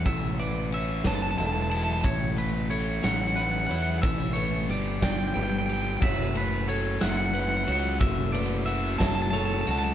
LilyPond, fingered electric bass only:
\new Staff \with { instrumentName = "Fingered electric bass" } { \clef bass \time 6/8 \key a \mixolydian \tempo 4. = 60 a,,4. fis,,8 e,,4 | a,,4. a,,4 e,8 | a,,4 g,,4 g,,4 | fis,,4. fis,,4 cis,8 |
fis,,4. fis,,4 cis,8 | }